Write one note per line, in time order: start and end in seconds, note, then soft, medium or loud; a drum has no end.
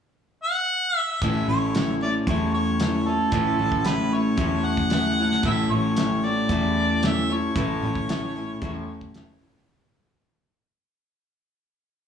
0.43 0.98 F#5 loud
0.98 1.18 E5 loud
1.22 1.45 A1 medium
1.22 1.48 A2 medium
1.22 1.49 E3 medium
1.22 1.49 A3 medium
1.22 1.49 C#4 medium
1.22 1.48 E4 medium
1.22 2.30 A4 medium
1.22 1.46 C#5 medium
1.22 1.47 E5 medium
1.22 kick medium
1.22 closed hi-hat medium
1.48 2.16 A1 medium
1.48 1.74 A3 soft
1.48 1.75 C#4 soft
1.48 1.75 E4 soft
1.48 1.74 C#5 soft
1.48 1.97 C#5 medium
1.75 2.01 A2 medium
1.75 2.01 E3 medium
1.75 2.01 A3 medium
1.75 2.02 C#4 medium
1.75 2.01 E4 medium
1.75 2.00 C#5 medium
1.75 snare loud
1.75 closed hi-hat medium
2.01 2.26 A3 soft
2.01 2.27 C#4 soft
2.01 2.28 E4 soft
2.01 2.27 C#5 medium
2.01 2.14 D5 medium
2.27 3.18 E2 medium
2.27 3.31 A2 medium
2.27 2.81 A3 medium
2.27 2.81 C#4 medium
2.27 2.81 E4 medium
2.27 3.34 A4 medium
2.27 2.52 C#5 medium
2.27 2.81 C#5 medium
2.27 kick loud
2.27 closed hi-hat medium
2.54 3.09 C#5 medium
2.80 3.06 A2 medium
2.80 3.06 E3 medium
2.80 3.07 A3 medium
2.80 3.07 C#4 medium
2.80 3.07 E4 medium
2.80 3.05 C#5 medium
2.80 snare loud
2.80 closed hi-hat medium
3.07 3.32 A3 soft
3.07 3.33 C#4 soft
3.07 3.33 E4 soft
3.07 3.88 A4 medium
3.07 3.33 C#5 soft
3.32 3.55 A1 medium
3.32 3.59 A2 medium
3.32 3.59 E3 medium
3.32 3.60 A3 medium
3.32 3.60 C#4 medium
3.32 3.59 E4 medium
3.32 4.40 A4 medium
3.32 3.58 C#5 medium
3.32 kick loud
3.32 closed hi-hat medium
3.59 4.28 A1 medium
3.59 3.85 A3 soft
3.59 3.86 C#4 soft
3.59 3.86 E4 soft
3.59 3.86 C#5 soft
3.72 kick medium
3.85 4.12 A2 medium
3.85 4.12 E3 medium
3.85 4.13 A3 medium
3.85 4.13 C#4 medium
3.85 4.12 E4 medium
3.85 4.15 B4 medium
3.85 4.11 C#5 medium
3.85 snare loud
3.85 closed hi-hat medium
4.12 4.37 A3 soft
4.12 4.38 C#4 soft
4.12 4.39 E4 soft
4.12 4.39 C#5 medium
4.12 4.67 C#5 medium
4.37 5.30 E2 medium
4.37 5.44 A2 medium
4.37 4.93 A3 medium
4.37 4.93 C#4 medium
4.37 4.93 E4 medium
4.37 5.47 A4 medium
4.37 4.94 C#5 medium
4.37 kick medium
4.37 closed hi-hat soft
4.66 5.44 F#5 loud
4.77 kick medium
4.90 5.18 A2 medium
4.90 5.18 E3 medium
4.90 5.19 A3 medium
4.90 5.19 C#4 medium
4.90 5.18 E4 medium
4.90 snare loud
4.90 closed hi-hat medium
4.94 5.17 C#5 medium
5.18 5.44 A3 soft
5.18 5.44 C#4 soft
5.18 5.45 E4 soft
5.18 5.45 C#5 soft
5.32 snare soft
5.43 5.67 A1 medium
5.43 5.71 A2 medium
5.43 5.71 E3 medium
5.43 5.71 A3 medium
5.43 5.70 C#4 medium
5.43 5.70 E4 medium
5.43 5.68 C#5 medium
5.43 5.73 E5 loud
5.43 kick loud
5.43 closed hi-hat medium
5.47 6.52 A4 loud
5.69 6.39 A1 medium
5.69 5.97 A3 soft
5.69 5.97 C#4 soft
5.69 5.97 E4 soft
5.69 5.97 C#5 soft
5.69 6.26 C#5 medium
5.97 6.24 A2 medium
5.97 6.24 E3 medium
5.97 6.24 A3 medium
5.97 6.24 C#4 medium
5.97 6.23 E4 medium
5.97 6.22 C#5 medium
5.97 snare loud
5.97 closed hi-hat medium
6.23 6.49 A3 soft
6.23 6.51 C#4 soft
6.23 6.51 E4 soft
6.23 6.50 C#5 medium
6.23 7.08 D5 medium
6.49 7.41 E2 loud
6.49 7.55 A2 medium
6.49 7.04 A3 medium
6.49 7.56 C#4 medium
6.49 7.04 E4 medium
6.49 7.57 A4 medium
6.49 kick medium
6.49 closed hi-hat medium
7.03 7.30 A2 medium
7.03 7.30 E3 medium
7.03 7.30 A3 medium
7.03 7.30 C#4 medium
7.03 7.30 E4 medium
7.03 7.28 C#5 medium
7.03 7.34 E5 medium
7.03 snare loud
7.03 closed hi-hat medium
7.29 7.56 A3 soft
7.29 7.56 C#4 soft
7.29 7.57 E4 soft
7.29 7.56 C#5 medium
7.29 9.17 C#5 medium
7.56 7.79 A1 medium
7.56 7.83 A2 medium
7.56 7.83 E3 medium
7.56 7.83 A3 medium
7.56 7.83 C#4 medium
7.56 7.82 E4 medium
7.56 8.61 A4 medium
7.56 7.81 C#5 medium
7.56 kick loud
7.56 closed hi-hat medium
7.83 8.52 A1 medium
7.83 8.09 A3 soft
7.83 8.10 C#4 soft
7.83 8.10 E4 soft
7.83 8.09 C#5 soft
7.95 kick medium
8.09 8.36 A2 medium
8.09 8.36 E3 medium
8.09 8.36 A3 medium
8.09 8.37 C#4 medium
8.09 8.36 E4 medium
8.09 8.35 C#5 medium
8.09 snare loud
8.09 closed hi-hat medium
8.36 8.61 A3 soft
8.36 8.62 C#4 soft
8.36 8.63 E4 medium
8.36 8.62 C#5 medium
8.62 9.54 E2 medium
8.62 9.66 A2 medium
8.62 9.15 A3 medium
8.62 9.16 C#4 medium
8.62 9.16 E4 medium
8.62 9.68 A4 medium
8.62 9.17 C#5 medium
8.62 kick medium
8.62 closed hi-hat medium
9.01 kick medium
9.14 9.42 A2 medium
9.14 9.42 E3 medium
9.14 9.42 A3 medium
9.14 9.42 C#4 medium
9.14 9.41 E4 medium
9.14 9.40 C#5 medium
9.14 snare loud
9.14 closed hi-hat medium
9.41 9.70 A3 soft
9.41 9.69 C#4 soft
9.41 9.68 E4 medium
9.41 9.68 C#5 medium
9.56 snare soft